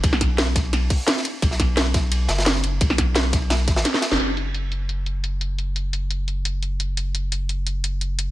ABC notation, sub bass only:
X:1
M:4/4
L:1/16
Q:1/4=173
K:Bdor
V:1 name="Sub bass" clef=bass
B,,,8- B,,,2 z6 | B,,,8- B,,,2 F,,,4 F,,,2 | B,,,8- B,,,2 A,,,2 z3 F,,, | F,,,16- |
F,,,16- | F,,,16 |]